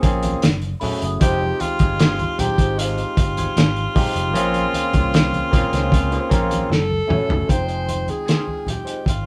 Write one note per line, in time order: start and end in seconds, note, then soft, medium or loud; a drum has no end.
0.00 0.33 A#1 medium
0.00 0.02 A#3 loud
0.00 0.42 A#3 medium
0.00 0.03 C4 medium
0.00 0.42 C4 medium
0.00 0.03 C#4 medium
0.00 0.43 C#4 medium
0.00 0.04 F4 medium
0.00 0.05 G#4 loud
0.00 0.53 G#5 medium
0.00 0.76 C6 medium
0.00 0.97 D#6 medium
0.00 0.19 F6 medium
0.00 muted clean electric guitar stroke soft
0.00 kick medium
0.00 closed hi-hat medium
0.04 0.43 F4 medium
0.04 0.43 G#4 loud
0.23 muted clean electric guitar stroke soft
0.23 closed hi-hat medium
0.23 high conga medium
0.42 0.73 F#1 loud
0.42 muted clean electric guitar stroke soft
0.42 snare loud
0.42 closed hi-hat medium
0.42 muted conga soft
0.62 closed hi-hat soft
0.62 muted conga soft
0.80 1.15 A3 medium
0.80 1.15 C#4 medium
0.80 1.15 E4 medium
0.80 0.97 E4 medium
0.80 1.16 F#4 medium
0.80 1.16 G#4 medium
0.80 0.97 A4 medium
0.80 0.97 C#5 medium
0.80 1.55 B5 medium
0.80 open hi-hat medium
0.80 low conga medium
1.02 1.17 F#1 medium
1.02 1.77 D#6 medium
1.02 muted clean electric guitar stroke soft
1.02 closed hi-hat medium
1.20 1.51 F1 loud
1.20 2.21 G#3 loud
1.20 2.21 C4 medium
1.20 1.40 D#4 medium
1.20 2.22 D#4 medium
1.20 2.22 F4 medium
1.20 1.63 G4 loud
1.20 2.22 G4 loud
1.20 1.40 G#4 medium
1.20 1.40 C5 medium
1.20 kick loud
1.20 closed hi-hat loud
1.41 muted clean electric guitar stroke soft
1.41 muted conga soft
1.60 2.41 F4 loud
1.60 muted clean electric guitar stroke soft
1.60 closed hi-hat medium
1.60 high conga medium
1.79 2.24 G1 medium
1.79 1.96 D#4 soft
1.79 1.95 G#4 medium
1.79 1.95 D#5 medium
1.79 kick medium
1.79 closed hi-hat medium
1.79 high conga medium
1.99 2.18 D#4 medium
1.99 2.19 G#4 medium
1.99 2.19 C5 medium
1.99 snare loud
1.99 closed hi-hat medium
1.99 muted conga soft
2.19 closed hi-hat soft
2.19 muted conga soft
2.19 high conga medium
2.38 3.72 G#3 medium
2.38 3.73 C4 medium
2.38 3.73 D#4 medium
2.38 3.73 F4 medium
2.38 2.80 G4 loud
2.38 3.74 G4 medium
2.38 muted clean electric guitar stroke soft
2.38 muted fingered electric bass stroke soft
2.38 closed hi-hat medium
2.38 high conga medium
2.38 low conga medium
2.58 3.03 G#1 medium
2.58 2.74 D#4 soft
2.58 2.73 G#4 medium
2.58 2.73 C5 medium
2.58 kick medium
2.58 closed hi-hat medium
2.78 2.97 D#4 medium
2.78 6.71 F4 loud
2.78 2.97 G#4 medium
2.78 2.98 C5 medium
2.78 closed hi-hat medium
2.98 closed hi-hat soft
2.98 muted conga soft
3.17 3.47 G1 medium
3.17 muted clean electric guitar stroke soft
3.17 kick medium
3.17 closed hi-hat medium
3.37 3.52 D#4 soft
3.37 3.52 G#4 soft
3.37 3.51 C5 medium
3.37 closed hi-hat medium
3.37 high conga medium
3.56 3.86 G#1 medium
3.56 snare loud
3.56 closed hi-hat medium
3.56 muted conga soft
3.76 muted clean electric guitar stroke soft
3.76 closed hi-hat soft
3.94 4.29 G#3 medium
3.94 4.29 C4 medium
3.94 4.14 D#4 medium
3.94 4.29 D#4 medium
3.94 4.30 F4 medium
3.94 4.30 G4 medium
3.94 4.15 G#4 medium
3.94 4.14 C5 medium
3.94 kick medium
3.94 open hi-hat medium
3.94 low conga medium
4.15 4.35 F1 medium
4.15 muted clean electric guitar stroke soft
4.15 closed hi-hat medium
4.33 4.64 A#1 loud
4.33 5.35 A#3 loud
4.33 5.35 C4 loud
4.33 5.35 C#4 loud
4.33 4.54 C#4 medium
4.33 5.35 F4 loud
4.33 4.54 G#4 medium
4.33 5.36 G#4 loud
4.33 4.53 C5 medium
4.33 closed hi-hat medium
4.54 muted clean electric guitar stroke soft
4.54 closed hi-hat soft
4.54 muted conga soft
4.74 muted clean electric guitar stroke soft
4.74 closed hi-hat medium
4.74 high conga medium
4.93 5.38 C2 medium
4.93 5.09 C#4 soft
4.93 5.09 G#4 medium
4.93 5.08 C5 medium
4.93 kick medium
4.93 closed hi-hat soft
4.93 high conga medium
5.13 muted clean electric guitar stroke soft
5.13 snare loud
5.13 closed hi-hat medium
5.13 muted conga soft
5.33 muted clean electric guitar stroke soft
5.33 closed hi-hat soft
5.33 muted conga soft
5.33 high conga medium
5.51 5.66 C#3 medium
5.51 6.19 A#3 medium
5.51 6.19 C4 medium
5.51 5.66 C4 medium
5.51 6.19 C#4 medium
5.51 6.20 F4 medium
5.51 5.66 F4 medium
5.51 6.20 G#4 medium
5.51 kick loud
5.51 closed hi-hat medium
5.51 high conga medium
5.51 low conga medium
5.72 6.17 C#2 medium
5.72 5.90 C#4 medium
5.72 5.91 G#4 medium
5.72 5.91 C5 medium
5.72 snare soft
5.72 closed hi-hat medium
5.91 6.26 C#3 medium
5.91 6.26 C4 medium
5.91 6.26 F4 medium
5.91 muted clean electric guitar stroke soft
5.91 kick loud
5.91 closed hi-hat medium
6.10 6.29 C#4 medium
6.10 6.29 G#4 medium
6.10 6.30 C5 medium
6.10 closed hi-hat soft
6.29 6.61 A#1 medium
6.29 6.69 A#3 medium
6.29 6.70 C4 medium
6.29 6.70 C#4 medium
6.29 6.70 F4 medium
6.29 6.71 A#4 loud
6.29 muted clean electric guitar stroke soft
6.29 kick medium
6.29 closed hi-hat medium
6.50 muted clean electric guitar stroke soft
6.50 closed hi-hat medium
6.50 high conga medium
6.69 7.00 F#1 loud
6.69 7.52 A4 loud
6.69 muted clean electric guitar stroke soft
6.69 snare medium
6.90 muted conga soft
6.90 high conga soft
7.07 7.42 A3 medium
7.07 7.42 C#4 medium
7.07 7.43 E4 medium
7.07 7.24 E4 medium
7.07 7.43 F#4 medium
7.07 7.25 A4 medium
7.07 7.25 C#5 medium
7.07 7.43 G#5 medium
7.07 mid tom loud
7.07 low conga medium
7.28 7.44 F#1 medium
7.28 muted clean electric guitar stroke soft
7.28 floor tom loud
7.47 8.09 F1 medium
7.47 8.83 G#3 medium
7.47 8.83 C4 medium
7.47 8.83 D#4 medium
7.47 8.83 F4 medium
7.47 8.11 C5 loud
7.47 8.84 G5 loud
7.47 muted clean electric guitar stroke soft
7.47 kick loud
7.47 closed hi-hat medium
7.67 7.86 D#4 medium
7.67 7.87 G#4 soft
7.67 7.86 C5 medium
7.67 closed hi-hat soft
7.87 9.19 C6 medium
7.87 muted clean electric guitar stroke soft
7.87 closed hi-hat medium
7.87 high conga medium
8.06 8.71 G#4 medium
8.06 muted clean electric guitar stroke soft
8.06 closed hi-hat soft
8.06 high conga medium
8.13 9.26 D#6 medium
8.26 8.45 D#4 medium
8.26 8.46 G#4 medium
8.26 8.47 C5 medium
8.26 snare medium
8.26 closed hi-hat medium
8.26 muted conga soft
8.39 9.26 F6 soft
8.48 high conga medium
8.65 9.07 G4 medium
8.65 muted clean electric guitar stroke soft
8.65 closed hi-hat medium
8.65 high conga medium
8.65 low conga medium
8.85 9.01 D#4 soft
8.85 9.01 G#4 soft
8.85 9.00 C5 soft
8.85 closed hi-hat medium
9.04 9.26 G#1 medium
9.04 9.26 G5 soft
9.04 muted clean electric guitar stroke soft
9.04 kick medium
9.04 closed hi-hat medium
9.04 muted conga soft
9.09 9.26 F4 medium